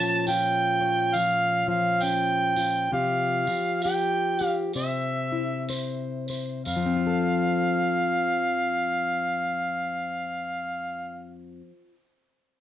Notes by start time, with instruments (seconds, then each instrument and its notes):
Already playing: steel-string acoustic guitar A#2 F3 C#4 F4 C#5, harmonica A5
0.27 steel-string acoustic guitar F4, harmonica G5, tambourine
0.81 steel-string acoustic guitar C#5
1.14 steel-string acoustic guitar F3, harmonica F5, tambourine
1.68 steel-string acoustic guitar F3, harmonica F5
2.01 steel-string acoustic guitar C#4, harmonica G5, tambourine
2.56 steel-string acoustic guitar F4, tambourine
2.92 steel-string acoustic guitar C3 F3 F4 G4, harmonica F5
3.47 steel-string acoustic guitar F3, tambourine
3.82 steel-string acoustic guitar G4, harmonica G5, tambourine
4.39 steel-string acoustic guitar G4, tambourine
4.46 harmonica F5
4.73 steel-string acoustic guitar C3 C5, harmonica E5, tambourine
5.32 steel-string acoustic guitar E4
5.69 steel-string acoustic guitar C5, tambourine
6.28 steel-string acoustic guitar C5, tambourine
6.65 steel-string acoustic guitar F2, harmonica F5, tambourine
6.76 steel-string acoustic guitar F3
6.86 steel-string acoustic guitar C4
6.96 steel-string acoustic guitar F4
7.07 steel-string acoustic guitar A4